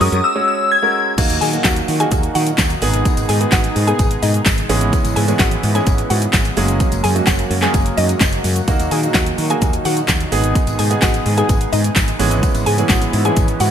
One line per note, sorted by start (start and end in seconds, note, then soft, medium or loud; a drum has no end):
0.00 0.08 F#2 loud
0.00 0.30 G#3 medium
0.00 0.30 C#4 medium
0.00 0.30 F#4 medium
0.00 0.30 A#4 medium
0.00 0.25 D#6 medium
0.00 open hi-hat medium
0.00 shaker medium
0.12 0.20 F#2 loud
0.12 closed hi-hat soft
0.12 tambourine soft
0.12 shaker medium
0.24 0.46 E6 loud
0.35 0.75 G#3 medium
0.35 0.75 C#4 medium
0.35 0.75 F#4 medium
0.35 0.75 C#5 medium
0.48 0.72 E6 medium
0.72 0.93 G#6 loud
0.82 1.12 G#3 medium
0.82 1.12 C#4 medium
0.82 1.12 F#4 medium
0.82 1.12 A#4 medium
1.18 1.26 D#2 loud
1.18 2.80 A#2 medium
1.18 4.66 D#3 medium
1.18 2.80 F#3 medium
1.18 1.47 A#3 medium
1.18 1.47 D#4 medium
1.18 4.66 D#4 medium
1.18 2.81 F#4 medium
1.18 1.48 F#4 loud
1.18 kick loud
1.18 closed hi-hat medium
1.18 crash loud
1.18 tambourine soft
1.18 shaker medium
1.30 1.37 D#2 loud
1.30 closed hi-hat medium
1.30 tambourine medium
1.30 shaker medium
1.41 1.56 D#3 loud
1.41 1.52 G#4 medium
1.41 1.51 G#5 medium
1.41 open hi-hat medium
1.41 tambourine soft
1.41 shaker medium
1.53 1.92 A#3 medium
1.53 1.92 D#4 medium
1.53 1.93 F#4 medium
1.53 closed hi-hat soft
1.53 shaker medium
1.64 1.80 D#2 loud
1.64 1.76 F#4 medium
1.64 1.75 F#5 medium
1.64 kick loud
1.64 snare loud
1.64 clap loud
1.64 closed hi-hat medium
1.64 tambourine medium
1.64 shaker medium
1.76 closed hi-hat medium
1.76 shaker medium
1.88 2.03 D#3 loud
1.88 open hi-hat medium
1.88 shaker medium
2.00 2.78 A#3 medium
2.00 2.78 D#4 medium
2.00 2.79 F#4 medium
2.00 2.21 G#4 medium
2.00 2.21 G#5 medium
2.00 closed hi-hat soft
2.00 shaker medium
2.11 2.27 D#2 loud
2.11 kick loud
2.11 closed hi-hat medium
2.11 tambourine medium
2.11 shaker medium
2.23 closed hi-hat medium
2.23 shaker medium
2.35 2.50 D#3 loud
2.35 2.46 F#4 medium
2.35 2.45 F#5 medium
2.35 open hi-hat medium
2.35 tambourine medium
2.35 shaker medium
2.47 closed hi-hat medium
2.47 tambourine soft
2.47 shaker medium
2.58 2.74 D#2 loud
2.58 kick loud
2.58 snare loud
2.58 clap loud
2.58 closed hi-hat medium
2.58 tambourine loud
2.58 shaker medium
2.70 closed hi-hat medium
2.70 shaker medium
2.82 3.05 G#1 loud
2.82 4.67 B2 medium
2.82 8.64 G#3 medium
2.82 3.31 B3 loud
2.82 3.31 D#4 medium
2.82 4.67 G#4 medium
2.82 3.31 G#4 loud
2.82 open hi-hat medium
2.82 tambourine medium
2.82 shaker medium
2.94 closed hi-hat medium
2.94 shaker medium
3.05 kick loud
3.05 closed hi-hat medium
3.05 tambourine soft
3.05 shaker medium
3.17 3.25 G#1 loud
3.17 closed hi-hat medium
3.17 tambourine medium
3.17 shaker medium
3.29 3.44 G#2 loud
3.29 3.40 G#4 medium
3.29 3.39 G#5 medium
3.29 open hi-hat medium
3.29 tambourine soft
3.29 shaker medium
3.40 3.80 B3 medium
3.40 3.80 D#4 medium
3.40 3.80 G#4 medium
3.40 closed hi-hat soft
3.40 shaker medium
3.52 3.67 G#1 loud
3.52 3.63 F#4 medium
3.52 3.63 F#5 medium
3.52 kick loud
3.52 snare loud
3.52 clap loud
3.52 closed hi-hat medium
3.52 tambourine medium
3.52 shaker medium
3.64 closed hi-hat medium
3.64 shaker medium
3.76 3.91 G#2 loud
3.76 open hi-hat medium
3.76 shaker medium
3.87 4.66 B3 medium
3.87 4.66 D#4 medium
3.87 4.66 G#4 medium
3.87 4.08 G#4 medium
3.87 4.08 G#5 medium
3.87 closed hi-hat soft
3.87 shaker medium
3.99 4.15 G#1 loud
3.99 kick loud
3.99 closed hi-hat medium
3.99 tambourine medium
3.99 shaker medium
4.11 closed hi-hat medium
4.11 shaker medium
4.22 4.38 G#2 loud
4.22 4.33 D#4 medium
4.22 4.33 D#5 medium
4.22 open hi-hat medium
4.22 tambourine medium
4.22 shaker medium
4.34 closed hi-hat medium
4.34 shaker medium
4.46 4.61 G#1 loud
4.46 kick loud
4.46 snare loud
4.46 clap loud
4.46 closed hi-hat medium
4.46 tambourine medium
4.46 shaker medium
4.58 closed hi-hat medium
4.58 shaker medium
4.69 4.92 G#1 loud
4.69 8.64 C#3 medium
4.69 5.18 E3 loud
4.69 6.55 E3 medium
4.69 5.18 G#3 medium
4.69 6.55 B3 medium
4.69 5.18 B3 medium
4.69 5.18 C#4 medium
4.69 6.55 E4 medium
4.69 5.19 G#4 loud
4.69 open hi-hat medium
4.69 tambourine medium
4.69 shaker medium
4.81 closed hi-hat medium
4.81 shaker medium
4.93 kick loud
4.93 closed hi-hat medium
4.93 tambourine soft
4.93 shaker medium
5.04 5.12 G#1 loud
5.04 closed hi-hat medium
5.04 tambourine medium
5.04 shaker medium
5.16 5.32 G#2 loud
5.16 5.27 G#4 medium
5.16 5.26 G#5 medium
5.16 open hi-hat medium
5.16 tambourine soft
5.16 shaker medium
5.28 5.67 E3 medium
5.28 5.67 G#3 medium
5.28 5.67 B3 medium
5.28 5.67 C#4 medium
5.28 5.67 G#4 medium
5.28 closed hi-hat soft
5.28 tambourine soft
5.28 shaker medium
5.39 5.55 G#1 loud
5.39 5.50 F#4 medium
5.39 5.50 F#5 medium
5.39 kick loud
5.39 snare loud
5.39 clap loud
5.39 closed hi-hat medium
5.39 tambourine medium
5.39 shaker medium
5.51 closed hi-hat medium
5.51 shaker medium
5.63 5.78 G#2 loud
5.63 open hi-hat medium
5.63 shaker medium
5.74 6.53 E3 medium
5.74 6.53 G#3 medium
5.74 6.53 B3 medium
5.74 6.53 C#4 medium
5.74 6.54 G#4 medium
5.74 5.96 G#4 medium
5.74 5.96 G#5 medium
5.74 closed hi-hat soft
5.74 tambourine soft
5.74 shaker medium
5.86 6.02 G#1 loud
5.86 kick loud
5.86 closed hi-hat medium
5.86 tambourine medium
5.86 shaker medium
5.98 closed hi-hat medium
5.98 shaker medium
6.10 6.25 G#2 loud
6.10 6.21 F#4 medium
6.10 6.20 F#5 medium
6.10 open hi-hat medium
6.10 tambourine medium
6.10 shaker medium
6.22 closed hi-hat medium
6.22 shaker medium
6.33 6.49 G#1 loud
6.33 kick loud
6.33 snare loud
6.33 clap loud
6.33 closed hi-hat medium
6.33 tambourine medium
6.33 shaker medium
6.45 closed hi-hat medium
6.45 shaker medium
6.57 6.80 F#1 loud
6.57 10.28 F#3 medium
6.57 7.06 F#3 loud
6.57 7.06 G#3 medium
6.57 8.66 A#3 medium
6.57 7.06 A#3 medium
6.57 7.06 C#4 medium
6.57 10.28 F#4 medium
6.57 7.06 G#4 loud
6.57 open hi-hat medium
6.57 tambourine medium
6.57 shaker medium
6.68 closed hi-hat medium
6.68 shaker medium
6.80 kick loud
6.80 closed hi-hat medium
6.80 tambourine soft
6.80 shaker medium
6.92 7.00 F#1 loud
6.92 closed hi-hat medium
6.92 tambourine medium
6.92 shaker medium
7.04 7.19 F#2 loud
7.04 7.14 G#4 medium
7.04 7.14 G#5 medium
7.04 open hi-hat medium
7.04 tambourine soft
7.04 shaker medium
7.15 7.55 F#3 medium
7.15 7.55 G#3 medium
7.15 7.55 A#3 medium
7.15 7.55 C#4 medium
7.15 7.55 F#4 medium
7.15 closed hi-hat soft
7.15 tambourine soft
7.15 shaker medium
7.27 7.42 F#1 loud
7.27 7.38 F#4 medium
7.27 7.37 F#5 medium
7.27 kick loud
7.27 snare loud
7.27 clap loud
7.27 closed hi-hat medium
7.27 tambourine medium
7.27 shaker medium
7.39 closed hi-hat medium
7.39 shaker medium
7.50 7.66 F#2 loud
7.50 open hi-hat medium
7.50 shaker medium
7.62 8.41 F#3 medium
7.62 8.41 G#3 medium
7.62 8.41 A#3 medium
7.62 8.41 C#4 medium
7.62 8.41 G#4 medium
7.62 7.84 G#4 medium
7.62 7.83 G#5 medium
7.62 clap medium
7.62 closed hi-hat medium
7.62 tambourine soft
7.62 shaker medium
7.74 7.89 F#1 loud
7.74 kick loud
7.74 closed hi-hat medium
7.74 tambourine medium
7.74 shaker medium
7.86 closed hi-hat medium
7.86 shaker medium
7.97 8.13 F#2 loud
7.97 8.08 D#4 medium
7.97 8.08 D#5 medium
7.97 open hi-hat medium
7.97 tambourine medium
7.97 shaker medium
8.09 closed hi-hat medium
8.09 tambourine soft
8.09 shaker medium
8.21 8.36 F#1 loud
8.21 kick loud
8.21 snare loud
8.21 clap loud
8.21 closed hi-hat medium
8.21 tambourine medium
8.21 shaker medium
8.33 closed hi-hat medium
8.33 shaker medium
8.44 8.60 F#2 loud
8.44 open hi-hat medium
8.44 tambourine medium
8.44 shaker medium
8.56 closed hi-hat medium
8.56 tambourine soft
8.56 shaker medium
8.68 8.75 D#2 loud
8.68 10.30 A#2 medium
8.68 12.16 D#3 medium
8.68 8.97 A#3 medium
8.68 8.97 D#4 medium
8.68 12.16 D#4 medium
8.68 8.97 F#4 loud
8.68 kick loud
8.68 closed hi-hat medium
8.68 tambourine soft
8.68 shaker medium
8.79 8.87 D#2 loud
8.79 closed hi-hat medium
8.79 tambourine medium
8.79 shaker medium
8.91 9.06 D#3 loud
8.91 9.02 G#4 medium
8.91 9.02 G#5 medium
8.91 open hi-hat medium
8.91 tambourine soft
8.91 shaker medium
9.03 9.42 A#3 medium
9.03 9.42 D#4 medium
9.03 9.42 F#4 medium
9.03 closed hi-hat soft
9.03 tambourine soft
9.03 shaker medium
9.14 9.30 D#2 loud
9.14 9.26 F#4 medium
9.14 9.25 F#5 medium
9.14 kick loud
9.14 snare loud
9.14 clap loud
9.14 closed hi-hat medium
9.14 tambourine medium
9.14 shaker medium
9.26 closed hi-hat medium
9.26 shaker medium
9.38 9.53 D#3 loud
9.38 open hi-hat medium
9.38 shaker medium
9.50 10.28 A#3 medium
9.50 10.28 D#4 medium
9.50 10.29 F#4 medium
9.50 9.71 G#4 medium
9.50 9.71 G#5 medium
9.50 closed hi-hat soft
9.50 shaker medium
9.61 9.77 D#2 loud
9.61 kick loud
9.61 closed hi-hat medium
9.61 tambourine medium
9.61 shaker medium
9.73 closed hi-hat medium
9.73 shaker medium
9.85 10.00 D#3 loud
9.85 9.96 F#4 medium
9.85 9.95 F#5 medium
9.85 open hi-hat medium
9.85 tambourine medium
9.85 shaker medium
9.97 closed hi-hat medium
9.97 tambourine soft
9.97 shaker medium
10.08 10.24 D#2 loud
10.08 kick loud
10.08 snare loud
10.08 clap loud
10.08 closed hi-hat medium
10.08 tambourine medium
10.08 shaker medium
10.20 closed hi-hat medium
10.20 shaker medium
10.32 10.55 G#1 loud
10.32 12.18 B2 medium
10.32 13.71 G#3 medium
10.32 10.81 B3 loud
10.32 10.81 D#4 medium
10.32 12.17 G#4 medium
10.32 10.81 G#4 loud
10.32 open hi-hat medium
10.32 tambourine medium
10.32 shaker medium
10.44 closed hi-hat medium
10.44 shaker medium
10.55 kick loud
10.55 closed hi-hat medium
10.55 tambourine soft
10.55 shaker medium
10.67 10.75 G#1 loud
10.67 closed hi-hat medium
10.67 tambourine medium
10.67 shaker medium
10.79 10.94 G#2 loud
10.79 10.90 G#4 medium
10.79 10.89 G#5 medium
10.79 open hi-hat medium
10.79 tambourine soft
10.79 shaker medium
10.90 11.30 B3 medium
10.90 11.30 D#4 medium
10.90 11.30 G#4 medium
10.90 closed hi-hat soft
10.90 shaker medium
11.02 11.17 G#1 loud
11.02 11.13 F#4 medium
11.02 11.13 F#5 medium
11.02 kick loud
11.02 snare loud
11.02 clap loud
11.02 closed hi-hat medium
11.02 tambourine medium
11.02 shaker medium
11.14 closed hi-hat medium
11.14 shaker medium
11.26 11.41 G#2 loud
11.26 open hi-hat medium
11.26 shaker medium
11.37 12.16 B3 medium
11.37 12.16 D#4 medium
11.37 12.16 G#4 medium
11.37 11.59 G#4 medium
11.37 11.58 G#5 medium
11.37 closed hi-hat soft
11.37 shaker medium
11.49 11.64 G#1 loud
11.49 kick loud
11.49 closed hi-hat medium
11.49 tambourine medium
11.49 shaker medium
11.61 closed hi-hat medium
11.61 shaker medium
11.73 11.88 G#2 loud
11.73 11.83 D#4 medium
11.73 11.83 D#5 medium
11.73 open hi-hat medium
11.73 tambourine medium
11.73 shaker medium
11.84 closed hi-hat medium
11.84 shaker medium
11.96 12.11 G#1 medium
11.96 kick loud
11.96 snare loud
11.96 clap loud
11.96 closed hi-hat medium
11.96 tambourine medium
11.96 shaker medium
12.08 closed hi-hat medium
12.08 shaker medium
12.19 12.42 G#1 loud
12.19 13.71 C#3 medium
12.19 12.68 E3 loud
12.19 13.71 E3 medium
12.19 12.68 G#3 medium
12.19 12.68 B3 medium
12.19 13.71 B3 medium
12.19 12.68 C#4 medium
12.19 13.71 E4 medium
12.19 12.69 G#4 loud
12.19 open hi-hat medium
12.19 tambourine medium
12.19 shaker medium
12.31 closed hi-hat medium
12.31 tambourine soft
12.31 shaker medium
12.43 kick loud
12.43 closed hi-hat medium
12.43 tambourine medium
12.43 shaker medium
12.55 12.62 G#1 loud
12.55 closed hi-hat medium
12.55 tambourine medium
12.55 shaker medium
12.66 12.82 G#2 loud
12.66 12.77 G#4 medium
12.66 12.77 G#5 medium
12.66 open hi-hat medium
12.66 tambourine soft
12.66 shaker medium
12.78 13.17 E3 medium
12.78 13.17 G#3 medium
12.78 13.17 B3 medium
12.78 13.17 C#4 medium
12.78 13.18 G#4 medium
12.78 closed hi-hat soft
12.78 tambourine soft
12.78 shaker medium
12.89 13.05 G#1 loud
12.89 13.00 F#4 medium
12.89 13.00 F#5 medium
12.89 kick loud
12.89 snare loud
12.89 clap loud
12.89 closed hi-hat medium
12.89 tambourine medium
12.89 shaker medium
13.02 closed hi-hat medium
13.02 shaker medium
13.13 13.28 G#2 loud
13.13 open hi-hat medium
13.13 shaker medium
13.25 13.71 E3 medium
13.25 13.71 G#3 medium
13.25 13.71 B3 medium
13.25 13.71 C#4 medium
13.25 13.71 G#4 medium
13.25 13.46 G#4 medium
13.25 13.46 G#5 medium
13.25 closed hi-hat soft
13.25 shaker medium
13.37 13.52 G#1 loud
13.37 kick loud
13.37 closed hi-hat medium
13.37 tambourine medium
13.37 shaker medium
13.48 closed hi-hat medium
13.48 shaker medium
13.60 13.71 G#2 loud
13.60 13.71 F#4 medium
13.60 13.71 F#5 medium
13.60 open hi-hat medium
13.60 tambourine medium
13.60 shaker medium